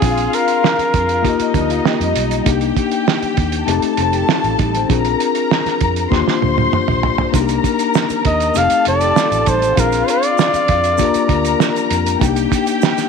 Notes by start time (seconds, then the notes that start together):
Already playing: G#4
0.00 A#1 C4 D4 F4 G#4 F5, kick, closed hi-hat
0.18 closed hi-hat
0.33 A#4, closed hi-hat
0.48 closed hi-hat
0.64 snare
0.78 muted fingered electric bass stroke, closed hi-hat
0.94 F2, kick, closed hi-hat
1.09 closed hi-hat
1.22 D#2 A#3 D#4 F4 G4 D#5, kick, closed hi-hat
1.40 muted fingered electric bass stroke, closed hi-hat
1.54 D2 F3 D4, kick, closed hi-hat
1.70 F4, closed hi-hat
1.85 A#3 G4, snare
2.00 F2 G3 D#4, closed hi-hat
2.16 B1, closed hi-hat
2.31 closed hi-hat
2.45 C2 A#3 D4 D#4 G4 G5, kick, closed hi-hat
2.61 closed hi-hat
2.77 kick, closed hi-hat
2.92 closed hi-hat
3.08 snare
3.22 muted fingered electric bass stroke, closed hi-hat
3.37 D#2, kick, closed hi-hat
3.52 closed hi-hat
3.66 F1 A3 C4 D#4 G4 A4 A5, closed hi-hat
3.82 muted fingered electric bass stroke, closed hi-hat
3.97 F1 C4 A4, closed hi-hat
4.13 G4, closed hi-hat
4.29 A3 F4, snare
4.44 A1, closed hi-hat
4.59 A1 G3 D#4, kick, closed hi-hat
4.75 D#3 C4, closed hi-hat
4.88 A#1 C4 D4 F4 G#4 A#4 A#5, kick, closed hi-hat
5.05 closed hi-hat
5.20 closed hi-hat
5.35 closed hi-hat
5.51 snare
5.66 muted fingered electric bass stroke, snare, closed hi-hat
5.81 F2, kick, closed hi-hat
5.96 closed hi-hat
6.10 D#2 A#3 D4 F4 G4 C5 C6, kick, snare
6.27 muted fingered electric bass stroke, snare
6.42 D2, high tom
6.58 high tom
6.73 muted fingered electric bass stroke, mid tom
6.88 A#1, mid tom
7.03 floor tom
7.18 floor tom
7.32 C2 A#3 D4 D#4 F#4 A#4 A#5, kick, closed hi-hat, shaker
7.41 G4
7.49 closed hi-hat, shaker
7.64 kick, closed hi-hat, shaker
7.79 closed hi-hat, shaker
7.94 snare, shaker
8.10 muted fingered electric bass stroke, closed hi-hat, shaker
8.25 D#2 D#5, kick, closed hi-hat
8.40 closed hi-hat, shaker
8.54 F1 A3 C4 D#4 G4 A4 F5 A5, closed hi-hat, shaker
8.70 muted fingered electric bass stroke, closed hi-hat, shaker
8.85 F1 C4 A4 D5, closed hi-hat
9.01 G4, closed hi-hat, shaker
9.16 A3 F4, snare, shaker
9.31 A1, closed hi-hat, shaker
9.46 A1 G3 D#4 C5, kick, closed hi-hat, shaker
9.62 D#3 C4, closed hi-hat, shaker
9.76 A#1 C4 D4 F4 G#4 A#4 F5, kick, closed hi-hat, shaker
9.92 closed hi-hat, shaker
10.08 D5, closed hi-hat, shaker
10.23 closed hi-hat, shaker
10.38 snare, shaker
10.54 muted fingered electric bass stroke, closed hi-hat, shaker
10.68 F2, kick, closed hi-hat
10.84 closed hi-hat, shaker
10.98 D#2 A#3 D4 F4 G4 A#4 A#5, kick, closed hi-hat, shaker
11.14 muted fingered electric bass stroke, closed hi-hat, shaker
11.29 D2, kick, closed hi-hat
11.45 closed hi-hat, shaker
11.60 snare, shaker
11.76 closed hi-hat, shaker
11.91 F2, closed hi-hat, shaker
12.06 closed hi-hat, shaker
12.19 C2 A#3 D4 D#4 F#4 G4 G5, kick, closed hi-hat, shaker
12.28 G4
12.36 closed hi-hat, shaker
12.52 kick, closed hi-hat, shaker
12.67 closed hi-hat, shaker
12.82 snare, shaker
12.98 snare, closed hi-hat, shaker